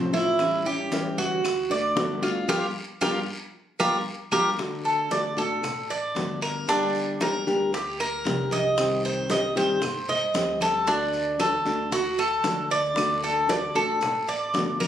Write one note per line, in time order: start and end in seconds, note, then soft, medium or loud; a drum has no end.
0.00 1.11 A1 medium
0.00 0.12 C3 medium
0.00 0.13 F3 medium
0.00 0.13 A3 medium
0.00 0.13 C4 medium
0.00 0.12 F4 medium
0.00 0.12 C5 medium
0.13 0.39 A3 soft
0.13 0.39 C4 soft
0.13 0.64 E4 medium
0.13 0.39 F4 soft
0.13 high bongo soft
0.13 high conga medium
0.13 short guiro medium
0.13 maracas soft
0.39 0.65 E3 medium
0.39 0.65 G3 medium
0.39 0.66 C#4 medium
0.39 0.65 E4 medium
0.39 high bongo medium
0.39 high conga soft
0.39 long guiro medium
0.39 claves medium
0.39 maracas medium
0.66 0.91 G3 soft
0.66 0.92 C#4 soft
0.66 0.91 E4 soft
0.66 1.17 G4 medium
0.66 high conga soft
0.66 maracas soft
0.92 1.43 E3 medium
0.92 1.43 G3 medium
0.92 1.44 C#4 medium
0.92 1.44 E4 medium
0.92 high bongo medium
0.92 high conga loud
0.92 short guiro medium
0.92 maracas medium
1.18 1.93 D2 medium
1.18 1.69 F#4 medium
1.18 high bongo soft
1.18 high conga soft
1.18 short guiro medium
1.18 maracas soft
1.44 muted nylon-string guitar stroke medium
1.44 high bongo medium
1.44 high conga soft
1.44 long guiro medium
1.44 claves medium
1.44 maracas medium
1.70 1.95 A3 soft
1.70 1.96 D4 soft
1.70 1.95 F#4 soft
1.70 2.22 D5 medium
1.70 high bongo soft
1.70 high conga soft
1.70 maracas soft
1.96 2.45 G1 medium
1.96 2.21 D3 medium
1.96 2.22 A3 medium
1.96 2.22 D4 medium
1.96 2.21 F#4 medium
1.96 high bongo medium
1.96 low bongo medium
1.96 high conga medium
1.96 short guiro medium
1.96 maracas medium
2.22 2.48 A3 soft
2.22 2.47 D4 soft
2.22 2.48 F4 medium
2.22 2.48 F#4 medium
2.22 high bongo soft
2.22 short guiro medium
2.22 claves medium
2.22 maracas soft
2.48 2.68 G1 medium
2.48 2.66 G3 medium
2.48 2.65 A#3 loud
2.48 2.65 D4 medium
2.48 2.66 F4 loud
2.48 2.66 G4 loud
2.48 2.66 A#4 medium
2.48 high bongo loud
2.48 high conga loud
2.48 long guiro loud
2.48 claves loud
2.48 maracas medium
3.01 3.21 G1 loud
3.01 3.19 G3 medium
3.01 3.18 A#3 medium
3.01 3.18 D4 medium
3.01 3.18 F4 loud
3.01 3.18 G4 medium
3.01 3.18 A#4 medium
3.01 high bongo medium
3.01 high conga loud
3.01 long guiro loud
3.01 claves medium
3.01 maracas medium
3.79 3.99 G1 medium
3.79 3.97 G3 medium
3.79 3.97 A#3 medium
3.79 3.97 D4 medium
3.79 3.97 F4 medium
3.79 3.97 G4 medium
3.79 3.97 A#4 medium
3.79 high bongo medium
3.79 high conga medium
3.79 long guiro medium
3.79 claves medium
3.79 maracas loud
4.31 4.52 G1 medium
4.31 4.49 G3 loud
4.31 4.49 A#3 loud
4.31 4.49 D4 medium
4.31 4.49 F4 medium
4.31 4.49 G4 medium
4.31 4.49 A#4 loud
4.31 high bongo medium
4.31 high conga loud
4.31 long guiro medium
4.31 claves medium
4.31 maracas medium
4.58 5.10 D3 medium
4.58 5.10 A3 medium
4.58 5.10 D4 medium
4.58 5.11 F#4 medium
4.58 high bongo medium
4.58 high conga soft
4.58 long guiro medium
4.58 claves medium
4.58 maracas medium
4.85 5.10 A4 medium
4.85 high conga soft
4.85 maracas soft
5.11 5.36 D3 soft
5.11 5.36 A3 soft
5.11 5.37 D4 soft
5.11 5.36 F#4 medium
5.11 5.37 D5 medium
5.11 high bongo medium
5.11 high conga loud
5.11 short guiro medium
5.11 maracas medium
5.37 6.11 A1 medium
5.37 5.62 A3 medium
5.37 5.62 D4 medium
5.37 5.62 F#4 medium
5.37 5.88 A4 medium
5.37 high bongo soft
5.37 high conga soft
5.37 short guiro medium
5.37 maracas soft
5.63 muted nylon-string guitar stroke medium
5.63 high bongo medium
5.63 high conga soft
5.63 low conga medium
5.63 long guiro medium
5.63 claves medium
5.63 maracas medium
5.90 6.41 D5 medium
5.90 high bongo soft
5.90 high conga soft
5.90 maracas soft
6.15 7.40 G1 medium
6.15 6.67 D3 medium
6.15 6.67 A3 soft
6.15 6.67 D4 medium
6.15 6.67 F#4 medium
6.15 high bongo medium
6.15 low bongo medium
6.15 high conga medium
6.15 short guiro medium
6.15 maracas medium
6.41 6.67 A#4 medium
6.41 high bongo soft
6.41 short guiro medium
6.41 claves medium
6.41 maracas soft
6.68 7.19 D3 medium
6.68 7.19 G3 medium
6.68 7.20 A#3 medium
6.68 7.19 D4 medium
6.68 7.20 D4 medium
6.68 7.20 G4 medium
6.68 high bongo medium
6.68 high conga soft
6.68 long guiro medium
6.68 maracas medium
6.95 high bongo soft
6.95 high conga soft
6.95 maracas soft
7.20 7.46 G3 medium
7.20 7.46 A#3 medium
7.20 7.46 D4 medium
7.20 7.46 G4 medium
7.20 7.72 A#4 medium
7.20 high bongo medium
7.20 high conga loud
7.20 short guiro medium
7.20 claves medium
7.20 maracas medium
7.47 8.21 D2 medium
7.47 7.72 G3 medium
7.47 7.72 A#3 medium
7.47 7.72 D4 medium
7.47 7.72 G4 medium
7.47 high bongo soft
7.47 high conga soft
7.47 short guiro medium
7.47 maracas soft
7.73 7.99 G4 medium
7.73 muted nylon-string guitar stroke medium
7.73 high bongo medium
7.73 high conga soft
7.73 long guiro medium
7.73 maracas medium
8.00 8.50 A#4 medium
8.00 high conga soft
8.00 claves medium
8.00 maracas soft
8.24 9.50 C2 medium
8.24 8.77 G3 medium
8.24 8.77 A#3 medium
8.24 8.77 D4 medium
8.24 8.77 G4 medium
8.24 high bongo medium
8.24 low bongo medium
8.24 high conga medium
8.24 short guiro medium
8.24 maracas medium
8.51 9.03 D#5 medium
8.51 high bongo soft
8.51 high conga medium
8.51 short guiro medium
8.51 maracas soft
8.78 9.29 C3 medium
8.78 9.29 D#3 medium
8.78 9.29 G3 medium
8.78 9.30 C4 medium
8.78 9.30 G4 medium
8.78 high bongo medium
8.78 high conga soft
8.78 long guiro medium
8.78 claves medium
8.78 maracas medium
9.04 9.30 C5 medium
9.04 high conga soft
9.04 maracas soft
9.30 9.55 D#3 soft
9.30 9.55 G3 medium
9.30 9.55 C4 soft
9.30 9.55 G4 medium
9.30 9.56 D#5 medium
9.30 high bongo medium
9.30 high conga loud
9.30 short guiro medium
9.30 maracas medium
9.56 10.31 G2 medium
9.56 9.82 D#3 medium
9.56 9.82 G3 medium
9.56 9.81 C4 medium
9.56 9.81 G4 medium
9.56 10.07 C5 medium
9.56 high bongo soft
9.56 high conga soft
9.56 short guiro medium
9.56 maracas soft
9.82 muted nylon-string guitar stroke medium
9.82 high bongo medium
9.82 high conga soft
9.82 low conga medium
9.82 long guiro medium
9.82 claves medium
9.82 maracas medium
10.08 10.60 D#5 medium
10.08 high bongo soft
10.08 high conga soft
10.08 low conga medium
10.08 maracas soft
10.34 11.59 D2 medium
10.34 10.86 G3 medium
10.34 10.86 C4 medium
10.34 10.87 G4 medium
10.34 high bongo medium
10.34 low bongo medium
10.34 high conga medium
10.34 short guiro medium
10.34 maracas medium
10.60 10.87 A4 medium
10.60 high bongo soft
10.60 high conga medium
10.60 short guiro medium
10.60 claves medium
10.60 maracas soft
10.87 11.38 D3 medium
10.87 11.39 A3 medium
10.87 11.38 D4 medium
10.87 11.39 D4 medium
10.87 11.39 F#4 medium
10.87 high bongo medium
10.87 high conga soft
10.87 long guiro medium
10.87 maracas medium
11.13 high bongo soft
11.13 high conga soft
11.13 maracas soft
11.39 11.64 D3 soft
11.39 11.65 A3 soft
11.39 11.65 D4 medium
11.39 11.64 F#4 medium
11.39 11.91 A4 medium
11.39 high bongo medium
11.39 high conga loud
11.39 short guiro medium
11.39 claves medium
11.39 maracas medium
11.65 12.40 D2 medium
11.65 11.91 A3 medium
11.65 11.91 D4 medium
11.65 11.91 F#4 medium
11.65 high bongo soft
11.65 high conga soft
11.65 short guiro medium
11.65 maracas soft
11.92 12.18 F#4 medium
11.92 muted nylon-string guitar stroke medium
11.92 high bongo medium
11.92 high conga soft
11.92 long guiro medium
11.92 maracas medium
12.18 12.69 A4 medium
12.18 high conga soft
12.18 claves medium
12.18 maracas soft
12.44 13.68 D2 medium
12.44 12.95 D3 medium
12.44 12.96 A3 soft
12.44 12.96 D4 medium
12.44 12.96 F#4 medium
12.44 high bongo medium
12.44 low bongo medium
12.44 high conga medium
12.44 short guiro medium
12.44 maracas medium
12.70 13.22 D5 medium
12.70 high bongo soft
12.70 short guiro medium
12.70 maracas soft
12.96 13.48 D3 medium
12.96 13.48 A3 medium
12.96 13.48 D4 medium
12.96 13.48 F#4 medium
12.96 high bongo medium
12.96 high conga soft
12.96 long guiro medium
12.96 claves medium
12.96 maracas medium
13.23 13.49 A4 medium
13.23 high conga soft
13.23 maracas soft
13.49 13.74 D3 soft
13.49 13.74 A3 soft
13.49 13.74 D4 soft
13.49 13.74 F#4 medium
13.49 13.75 D5 medium
13.49 high bongo medium
13.49 high conga loud
13.49 short guiro medium
13.49 maracas medium
13.75 14.50 A1 medium
13.75 14.00 A3 medium
13.75 14.01 D4 medium
13.75 14.00 F#4 medium
13.75 14.26 A4 medium
13.75 high conga soft
13.75 short guiro medium
13.75 maracas soft
14.01 muted nylon-string guitar stroke medium
14.01 high bongo medium
14.01 high conga soft
14.01 low conga medium
14.01 long guiro medium
14.01 claves medium
14.01 maracas medium
14.28 14.79 D5 medium
14.28 high bongo soft
14.28 high conga soft
14.28 maracas soft
14.54 14.88 G1 medium
14.54 14.88 D3 medium
14.54 14.88 A3 medium
14.54 14.88 D4 medium
14.54 14.88 F#4 medium
14.54 high bongo medium
14.54 low bongo medium
14.54 high conga medium
14.54 short guiro medium
14.54 maracas medium
14.80 14.88 A#4 medium
14.80 high bongo soft
14.80 high conga medium
14.80 short guiro medium
14.80 claves medium
14.80 maracas soft